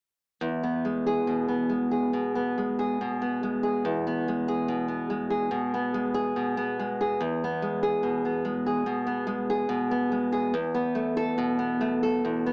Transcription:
0, 0, Header, 1, 2, 480
1, 0, Start_track
1, 0, Key_signature, 4, "major"
1, 0, Tempo, 863309
1, 228, Time_signature, 4, 2, 24, 8
1, 2144, Tempo, 835655
1, 6464, Tempo, 875912
1, 7095, End_track
2, 0, Start_track
2, 0, Title_t, "Nylon-string guitar"
2, 0, Program_c, 0, 24
2, 229, Note_on_c, 0, 40, 50
2, 353, Note_on_c, 0, 59, 40
2, 471, Note_on_c, 0, 56, 36
2, 592, Note_on_c, 0, 68, 42
2, 708, Note_on_c, 0, 47, 37
2, 818, Note_off_c, 0, 59, 0
2, 825, Note_on_c, 0, 59, 36
2, 935, Note_off_c, 0, 56, 0
2, 942, Note_on_c, 0, 56, 35
2, 1057, Note_off_c, 0, 68, 0
2, 1064, Note_on_c, 0, 68, 33
2, 1168, Note_off_c, 0, 40, 0
2, 1179, Note_off_c, 0, 47, 0
2, 1186, Note_on_c, 0, 47, 32
2, 1302, Note_off_c, 0, 59, 0
2, 1308, Note_on_c, 0, 59, 37
2, 1426, Note_off_c, 0, 56, 0
2, 1433, Note_on_c, 0, 56, 42
2, 1544, Note_off_c, 0, 68, 0
2, 1551, Note_on_c, 0, 68, 43
2, 1666, Note_off_c, 0, 47, 0
2, 1673, Note_on_c, 0, 47, 39
2, 1782, Note_off_c, 0, 59, 0
2, 1788, Note_on_c, 0, 59, 42
2, 1901, Note_off_c, 0, 56, 0
2, 1908, Note_on_c, 0, 56, 40
2, 2012, Note_off_c, 0, 68, 0
2, 2019, Note_on_c, 0, 68, 42
2, 2140, Note_on_c, 0, 40, 53
2, 2259, Note_off_c, 0, 59, 0
2, 2266, Note_on_c, 0, 59, 44
2, 2380, Note_off_c, 0, 56, 0
2, 2385, Note_off_c, 0, 47, 0
2, 2387, Note_on_c, 0, 56, 36
2, 2497, Note_off_c, 0, 68, 0
2, 2503, Note_on_c, 0, 68, 46
2, 2619, Note_on_c, 0, 47, 43
2, 2727, Note_off_c, 0, 59, 0
2, 2733, Note_on_c, 0, 59, 34
2, 2851, Note_off_c, 0, 56, 0
2, 2858, Note_on_c, 0, 56, 39
2, 2968, Note_off_c, 0, 68, 0
2, 2975, Note_on_c, 0, 68, 45
2, 3082, Note_off_c, 0, 40, 0
2, 3087, Note_off_c, 0, 47, 0
2, 3094, Note_on_c, 0, 47, 43
2, 3218, Note_off_c, 0, 59, 0
2, 3225, Note_on_c, 0, 59, 42
2, 3336, Note_off_c, 0, 56, 0
2, 3343, Note_on_c, 0, 56, 45
2, 3451, Note_off_c, 0, 68, 0
2, 3458, Note_on_c, 0, 68, 52
2, 3576, Note_off_c, 0, 47, 0
2, 3583, Note_on_c, 0, 47, 43
2, 3697, Note_off_c, 0, 59, 0
2, 3704, Note_on_c, 0, 59, 45
2, 3824, Note_off_c, 0, 56, 0
2, 3831, Note_on_c, 0, 56, 39
2, 3947, Note_off_c, 0, 68, 0
2, 3954, Note_on_c, 0, 68, 45
2, 4062, Note_off_c, 0, 47, 0
2, 4063, Note_off_c, 0, 59, 0
2, 4067, Note_off_c, 0, 56, 0
2, 4068, Note_on_c, 0, 40, 54
2, 4069, Note_off_c, 0, 68, 0
2, 4202, Note_on_c, 0, 59, 46
2, 4308, Note_on_c, 0, 56, 45
2, 4426, Note_on_c, 0, 68, 52
2, 4542, Note_on_c, 0, 47, 42
2, 4661, Note_off_c, 0, 59, 0
2, 4668, Note_on_c, 0, 59, 42
2, 4775, Note_off_c, 0, 56, 0
2, 4781, Note_on_c, 0, 56, 46
2, 4899, Note_off_c, 0, 68, 0
2, 4906, Note_on_c, 0, 68, 44
2, 5004, Note_off_c, 0, 40, 0
2, 5012, Note_off_c, 0, 47, 0
2, 5019, Note_on_c, 0, 47, 41
2, 5129, Note_off_c, 0, 59, 0
2, 5136, Note_on_c, 0, 59, 43
2, 5246, Note_off_c, 0, 56, 0
2, 5253, Note_on_c, 0, 56, 50
2, 5377, Note_off_c, 0, 68, 0
2, 5384, Note_on_c, 0, 68, 54
2, 5487, Note_off_c, 0, 47, 0
2, 5494, Note_on_c, 0, 47, 49
2, 5616, Note_off_c, 0, 59, 0
2, 5623, Note_on_c, 0, 59, 52
2, 5733, Note_off_c, 0, 56, 0
2, 5740, Note_on_c, 0, 56, 47
2, 5852, Note_off_c, 0, 68, 0
2, 5859, Note_on_c, 0, 68, 53
2, 5975, Note_off_c, 0, 47, 0
2, 5980, Note_off_c, 0, 56, 0
2, 5980, Note_off_c, 0, 59, 0
2, 5980, Note_off_c, 0, 68, 0
2, 5981, Note_on_c, 0, 40, 65
2, 6101, Note_on_c, 0, 59, 50
2, 6218, Note_on_c, 0, 57, 48
2, 6344, Note_on_c, 0, 69, 64
2, 6465, Note_on_c, 0, 47, 56
2, 6572, Note_off_c, 0, 59, 0
2, 6579, Note_on_c, 0, 59, 49
2, 6693, Note_off_c, 0, 57, 0
2, 6699, Note_on_c, 0, 57, 53
2, 6814, Note_off_c, 0, 69, 0
2, 6821, Note_on_c, 0, 69, 51
2, 6918, Note_off_c, 0, 40, 0
2, 6940, Note_on_c, 0, 40, 49
2, 7053, Note_off_c, 0, 59, 0
2, 7060, Note_on_c, 0, 59, 47
2, 7095, Note_off_c, 0, 40, 0
2, 7095, Note_off_c, 0, 47, 0
2, 7095, Note_off_c, 0, 57, 0
2, 7095, Note_off_c, 0, 59, 0
2, 7095, Note_off_c, 0, 69, 0
2, 7095, End_track
0, 0, End_of_file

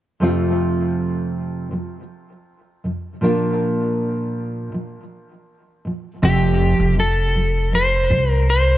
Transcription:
0, 0, Header, 1, 4, 480
1, 0, Start_track
1, 0, Key_signature, -1, "major"
1, 0, Tempo, 751880
1, 137, Time_signature, 4, 2, 24, 8
1, 5604, End_track
2, 0, Start_track
2, 0, Title_t, "Electric slide guitar"
2, 0, Program_c, 0, 29
2, 3990, Note_on_c, 0, 67, 76
2, 4437, Note_off_c, 0, 67, 0
2, 4467, Note_on_c, 0, 69, 72
2, 4945, Note_off_c, 0, 69, 0
2, 4947, Note_on_c, 0, 72, 85
2, 5305, Note_off_c, 0, 72, 0
2, 5305, Note_on_c, 0, 70, 85
2, 5418, Note_off_c, 0, 70, 0
2, 5426, Note_on_c, 0, 72, 82
2, 5604, Note_off_c, 0, 72, 0
2, 5604, End_track
3, 0, Start_track
3, 0, Title_t, "Nylon-string guitar"
3, 0, Program_c, 1, 24
3, 127, Note_on_c, 1, 41, 66
3, 133, Note_on_c, 1, 48, 67
3, 137, Note_on_c, 1, 53, 68
3, 142, Note_on_c, 1, 57, 71
3, 146, Note_on_c, 1, 60, 74
3, 150, Note_on_c, 1, 65, 74
3, 1083, Note_off_c, 1, 41, 0
3, 1091, Note_off_c, 1, 48, 0
3, 1091, Note_on_c, 1, 41, 48
3, 1099, Note_on_c, 1, 48, 46
3, 1101, Note_off_c, 1, 57, 0
3, 1102, Note_off_c, 1, 53, 0
3, 1103, Note_off_c, 1, 60, 0
3, 1104, Note_on_c, 1, 53, 51
3, 1287, Note_off_c, 1, 41, 0
3, 1291, Note_off_c, 1, 48, 0
3, 1294, Note_off_c, 1, 53, 0
3, 1613, Note_off_c, 1, 65, 0
3, 1813, Note_on_c, 1, 41, 40
3, 1820, Note_on_c, 1, 48, 43
3, 1827, Note_on_c, 1, 53, 44
3, 2008, Note_off_c, 1, 41, 0
3, 2012, Note_off_c, 1, 48, 0
3, 2015, Note_off_c, 1, 53, 0
3, 2049, Note_on_c, 1, 46, 62
3, 2054, Note_on_c, 1, 53, 67
3, 2061, Note_on_c, 1, 58, 75
3, 2066, Note_on_c, 1, 62, 76
3, 2070, Note_on_c, 1, 65, 72
3, 3005, Note_off_c, 1, 46, 0
3, 3013, Note_on_c, 1, 46, 48
3, 3020, Note_off_c, 1, 58, 0
3, 3022, Note_off_c, 1, 62, 0
3, 3026, Note_off_c, 1, 53, 0
3, 3029, Note_on_c, 1, 53, 54
3, 3208, Note_off_c, 1, 46, 0
3, 3215, Note_off_c, 1, 53, 0
3, 3535, Note_off_c, 1, 65, 0
3, 3734, Note_on_c, 1, 46, 45
3, 3747, Note_on_c, 1, 53, 45
3, 3928, Note_off_c, 1, 46, 0
3, 3934, Note_off_c, 1, 53, 0
3, 3972, Note_on_c, 1, 41, 68
3, 3974, Note_on_c, 1, 48, 69
3, 3975, Note_on_c, 1, 53, 68
3, 3979, Note_on_c, 1, 57, 66
3, 3980, Note_on_c, 1, 60, 73
3, 3982, Note_on_c, 1, 65, 74
3, 4440, Note_off_c, 1, 41, 0
3, 4448, Note_off_c, 1, 48, 0
3, 4448, Note_on_c, 1, 41, 47
3, 4456, Note_on_c, 1, 48, 52
3, 4457, Note_off_c, 1, 57, 0
3, 4458, Note_off_c, 1, 60, 0
3, 4459, Note_off_c, 1, 53, 0
3, 4462, Note_on_c, 1, 53, 59
3, 4644, Note_off_c, 1, 41, 0
3, 4648, Note_off_c, 1, 48, 0
3, 4651, Note_off_c, 1, 53, 0
3, 4689, Note_on_c, 1, 41, 40
3, 4697, Note_on_c, 1, 48, 47
3, 4703, Note_on_c, 1, 53, 47
3, 4884, Note_off_c, 1, 41, 0
3, 4888, Note_off_c, 1, 48, 0
3, 4891, Note_off_c, 1, 53, 0
3, 4928, Note_on_c, 1, 41, 48
3, 4936, Note_on_c, 1, 48, 47
3, 4942, Note_on_c, 1, 53, 48
3, 5123, Note_off_c, 1, 41, 0
3, 5127, Note_off_c, 1, 48, 0
3, 5131, Note_off_c, 1, 53, 0
3, 5167, Note_on_c, 1, 41, 40
3, 5174, Note_on_c, 1, 48, 40
3, 5182, Note_on_c, 1, 53, 45
3, 5362, Note_off_c, 1, 41, 0
3, 5366, Note_off_c, 1, 48, 0
3, 5370, Note_off_c, 1, 53, 0
3, 5604, Note_off_c, 1, 65, 0
3, 5604, End_track
4, 0, Start_track
4, 0, Title_t, "Upright bass"
4, 0, Program_c, 2, 32
4, 3976, Note_on_c, 2, 29, 92
4, 4311, Note_off_c, 2, 29, 0
4, 4338, Note_on_c, 2, 29, 78
4, 5150, Note_off_c, 2, 29, 0
4, 5175, Note_on_c, 2, 36, 73
4, 5604, Note_off_c, 2, 36, 0
4, 5604, End_track
0, 0, End_of_file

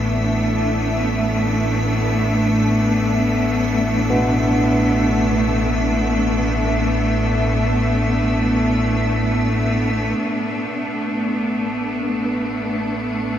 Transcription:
0, 0, Header, 1, 5, 480
1, 0, Start_track
1, 0, Tempo, 500000
1, 12852, End_track
2, 0, Start_track
2, 0, Title_t, "Ambient pad"
2, 0, Program_c, 0, 92
2, 0, Note_on_c, 0, 76, 75
2, 9759, Note_on_c, 0, 71, 76
2, 9800, Note_off_c, 0, 76, 0
2, 12852, Note_off_c, 0, 71, 0
2, 12852, End_track
3, 0, Start_track
3, 0, Title_t, "Cello section"
3, 0, Program_c, 1, 48
3, 0, Note_on_c, 1, 57, 79
3, 0, Note_on_c, 1, 59, 73
3, 0, Note_on_c, 1, 62, 62
3, 12852, Note_off_c, 1, 57, 0
3, 12852, Note_off_c, 1, 59, 0
3, 12852, Note_off_c, 1, 62, 0
3, 12852, End_track
4, 0, Start_track
4, 0, Title_t, "Church bells"
4, 0, Program_c, 2, 14
4, 3936, Note_on_c, 2, 59, 55
4, 9331, Note_off_c, 2, 59, 0
4, 12852, End_track
5, 0, Start_track
5, 0, Title_t, "Synth drone"
5, 0, Program_c, 3, 95
5, 0, Note_on_c, 3, 33, 76
5, 0, Note_on_c, 3, 45, 75
5, 9762, Note_off_c, 3, 33, 0
5, 9770, Note_off_c, 3, 45, 0
5, 9773, Note_on_c, 3, 33, 75
5, 9782, Note_on_c, 3, 45, 75
5, 12852, Note_off_c, 3, 33, 0
5, 12852, Note_off_c, 3, 45, 0
5, 12852, End_track
0, 0, End_of_file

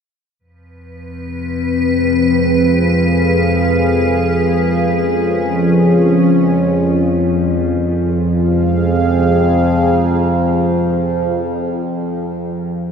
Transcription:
0, 0, Header, 1, 4, 480
1, 0, Start_track
1, 0, Tempo, 500000
1, 12401, End_track
2, 0, Start_track
2, 0, Title_t, "Ambient pad"
2, 0, Program_c, 0, 92
2, 378, Note_on_c, 0, 71, 78
2, 7484, Note_off_c, 0, 71, 0
2, 12401, End_track
3, 0, Start_track
3, 0, Title_t, "Analog synth pad"
3, 0, Program_c, 1, 89
3, 399, Note_on_c, 1, 60, 66
3, 849, Note_on_c, 1, 68, 79
3, 1994, Note_on_c, 1, 77, 76
3, 3928, Note_on_c, 1, 53, 77
3, 3932, Note_off_c, 1, 60, 0
3, 4361, Note_on_c, 1, 61, 78
3, 7469, Note_off_c, 1, 53, 0
3, 7469, Note_off_c, 1, 61, 0
3, 7475, Note_on_c, 1, 60, 73
3, 7476, Note_off_c, 1, 77, 0
3, 7477, Note_off_c, 1, 68, 0
3, 7614, Note_on_c, 1, 68, 70
3, 7737, Note_on_c, 1, 77, 70
3, 11742, Note_off_c, 1, 77, 0
3, 11745, Note_off_c, 1, 60, 0
3, 11747, Note_off_c, 1, 68, 0
3, 12401, End_track
4, 0, Start_track
4, 0, Title_t, "Synth drone"
4, 0, Program_c, 2, 95
4, 377, Note_on_c, 2, 53, 66
4, 383, Note_on_c, 2, 41, 64
4, 7450, Note_off_c, 2, 53, 0
4, 7452, Note_off_c, 2, 41, 0
4, 7461, Note_on_c, 2, 53, 70
4, 7464, Note_on_c, 2, 41, 71
4, 11826, Note_off_c, 2, 53, 0
4, 11827, Note_off_c, 2, 41, 0
4, 12401, End_track
0, 0, End_of_file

